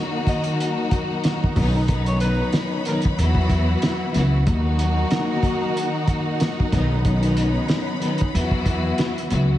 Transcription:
Already playing: string section D#3 F#3 A#3 D#4 F#4 A#4 F#5 A#5
0.27 tenor saxophone D#5, kick, closed hi-hat
0.44 closed hi-hat
0.60 closed hi-hat
0.91 kick, closed hi-hat
1.24 snare, closed hi-hat
1.44 kick
1.55 upright bass B1, string section D#3 F#3 B3 C#4 D#4 C#5 B5, kick, open hi-hat
1.86 string section D#3 F#3 B3 C#4 D#4, kick, closed hi-hat
2.06 tenor saxophone C#5, closed hi-hat
2.20 tenor saxophone B4, closed hi-hat
2.52 snare, closed hi-hat
2.84 string section D#3 F#3 B3 C#4 D#4, tenor saxophone A#4, closed hi-hat
3.02 kick, closed hi-hat
3.17 upright bass E2, string section E3 F#3 B3 E4 F#4 B4, closed hi-hat
3.35 kick
3.50 kick, closed hi-hat
3.82 snare, closed hi-hat
4.13 upright bass C#2, string section E3 F#3 B3 E4 F#4, snare, closed hi-hat
4.45 upright bass D#2, string section D#3 F#3 A#3 D#4 F#4 A#4 F#5 A#5, kick, closed hi-hat
4.79 closed hi-hat
5.11 snare, closed hi-hat
5.43 kick, closed hi-hat
5.77 closed hi-hat
6.08 kick, closed hi-hat
6.40 snare, closed hi-hat
6.60 kick
6.71 upright bass B1, string section D#3 F#3 B3 C#4 D#4 C#5 B5, kick, snare, closed hi-hat
7.02 string section D#3 F#3 B3 C#4 D#4, kick, closed hi-hat
7.23 closed hi-hat
7.37 closed hi-hat
7.69 snare, closed hi-hat
8.01 string section D#3 F#3 B3 C#4 D#4, closed hi-hat
8.18 kick, closed hi-hat
8.33 upright bass E2, string section E3 F#3 B3 E4 F#4 B4, closed hi-hat
8.51 kick
8.66 kick, closed hi-hat
8.98 snare, closed hi-hat
9.18 closed hi-hat
9.29 upright bass C#2, string section E3 F#3 B3 E4 F#4, closed hi-hat

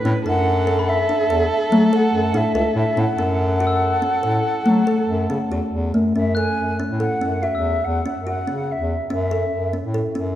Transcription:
Already playing: viola B4
0.05 bass clarinet A2, kalimba C#4
0.25 bass clarinet F#2, kalimba D4, viola A4, flute F#5
0.67 kalimba A4
0.79 glockenspiel B5
0.88 flute E5
1.09 kalimba D4
1.30 bass clarinet E2, kalimba A4
1.52 flute E5
1.71 bass clarinet F#3, kalimba A3
1.93 kalimba A4, flute F#5
2.13 bass clarinet F#2
2.34 bass clarinet A2, kalimba D4, flute E5
2.55 bass clarinet C#2, kalimba A4
2.75 bass clarinet A2, flute E5
2.97 bass clarinet A2, kalimba C#4, flute F#5
3.18 bass clarinet F#2, kalimba C#4, viola A4
3.60 kalimba F#4
3.67 glockenspiel E6
4.02 kalimba C#4
4.23 bass clarinet A2, kalimba A4
4.66 bass clarinet F#3, kalimba A3
4.87 kalimba A4
5.08 bass clarinet F#2
5.30 bass clarinet C#3, kalimba C#4
5.51 bass clarinet E2, kalimba F#4
5.72 bass clarinet E2
5.94 bass clarinet F#2, kalimba A3
6.15 bass clarinet F#2, kalimba C#4, flute E5
6.35 kalimba A4, flute G#5, glockenspiel F#6
6.58 bass clarinet F#2
6.79 kalimba C#4
6.89 bass clarinet A2
7.00 kalimba A4, flute F#5
7.21 bass clarinet F#2, kalimba C#4
7.42 kalimba F#4, flute E5
7.54 bass clarinet E2, glockenspiel E6
7.84 bass clarinet E2, flute F#5
8.06 kalimba C#4
8.17 bass clarinet F#2
8.27 kalimba F#4, flute F#5
8.47 bass clarinet C#3, kalimba C#4
8.71 flute E5
8.79 bass clarinet E2
9.10 bass clarinet F#2, kalimba C#4, flute E5
9.31 kalimba A4
9.52 bass clarinet F#2
9.73 kalimba C#4
9.84 bass clarinet A2
9.94 kalimba A4
10.15 bass clarinet F#2, kalimba C#4

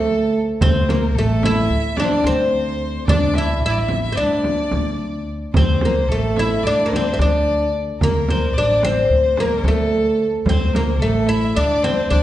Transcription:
Already playing: upright bass D2, oud A3, violin A4
0.61 upright bass D2, oud C4, violin C5, frame drum
0.89 oud A#3, violin A#4, frame drum
1.15 upright bass A1, oud A3, violin A4
1.43 oud E4, violin E5, frame drum
1.70 upright bass D2
1.96 oud D4, violin D5, frame drum
2.04 violin C5
2.12 violin D5
2.24 upright bass D2, oud C4, violin C5, frame drum
3.07 upright bass D2, oud D4, violin D5, frame drum
3.34 violin E5, frame drum
3.38 oud E4
3.61 upright bass A1, violin E5
3.66 oud E4
3.70 violin D5
3.79 violin E5
3.89 frame drum
4.04 violin E5
4.12 oud C4, violin D5
4.17 upright bass D2, oud D4
4.44 frame drum
4.71 upright bass D2, frame drum
5.54 upright bass D2, oud C4, violin C5, frame drum
5.81 oud A#3, frame drum
6.08 upright bass A1, oud A3, violin A4
6.36 oud E4, violin E5, frame drum
6.63 upright bass D2, oud D4, violin D5
6.86 oud A#3
6.90 violin C5, frame drum
6.96 oud C4
7.13 oud C4, violin E5
7.18 upright bass D2, oud D4, violin D5, frame drum
8.00 upright bass D2, oud A#3, violin A#4, frame drum
8.29 oud C4, frame drum
8.53 upright bass A1, violin D5
8.58 oud D4
8.75 violin D5
8.82 oud C4, violin C5, frame drum
9.10 upright bass D2
9.36 violin A#4, frame drum
9.40 oud A#3
9.63 upright bass D2, violin A4, frame drum
9.68 oud A3
10.46 upright bass D2, oud C4, violin C5, frame drum
10.67 violin C5
10.73 oud A#3, violin A#4, frame drum
10.99 upright bass A1, oud A3, violin A4
11.27 oud E4, violin E5
11.56 upright bass D2, oud D4, violin D5
11.83 oud C4, violin C5, frame drum
12.10 upright bass D2, oud D4, violin D5, frame drum

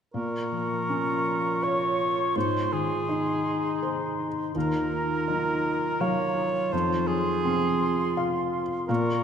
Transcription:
0.14 felt piano A#2, harp A#2, clarinet F4, cor anglais A#4, flute C#6
0.52 harp F3
0.89 felt piano C#4, harp F4
1.26 harp C#5
1.62 felt piano F4 C#5, harp A#4, cor anglais C#5
1.99 harp C#4
2.35 harp G#2, felt piano G#2, cor anglais C5, flute C6
2.71 harp D#3, cor anglais G#4
3.09 clarinet D#4, felt piano D#4
3.46 harp D#5
3.83 felt piano G#4 C5, harp C5
4.19 harp D#4
4.55 felt piano D#2, harp D#3, clarinet F4, cor anglais A#4, flute A#5
4.92 harp A#3
5.28 harp F#3, felt piano D#4
5.65 harp D#5
6.00 felt piano F#3 F5, cor anglais C#5, harp F5
6.37 harp D#4
6.72 felt piano F2, harp F3, cor anglais C5, flute C6
7.07 harp C4, cor anglais G#4
7.44 felt piano C4, harp F5
7.80 harp C5
8.17 felt piano F4 F5, harp F5
8.53 harp F4
8.88 felt piano A#2, harp A#2, clarinet F4, cor anglais A#4, flute C#6

